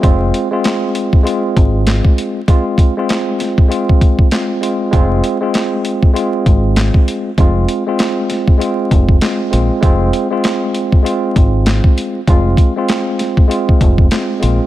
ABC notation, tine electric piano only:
X:1
M:4/4
L:1/16
Q:"Swing 16ths" 1/4=98
K:Fm
V:1 name="Tine electric piano"
[A,CF]3 [A,CF]4- [A,CF] [A,CF]6- [A,CF] z | [A,CF]3 [A,CF]4- [A,CF] [A,CF]4 [A,CF]2 [A,CF]2 | [A,CF]3 [A,CF]4- [A,CF] [A,CF]6- [A,CF] z | [A,CF]3 [A,CF]4- [A,CF] [A,CF]4 [A,CF]2 [A,CF]2 |
[A,CF]3 [A,CF]4- [A,CF] [A,CF]6- [A,CF] z | [A,CF]3 [A,CF]4- [A,CF] [A,CF]4 [A,CF]2 [A,CF]2 |]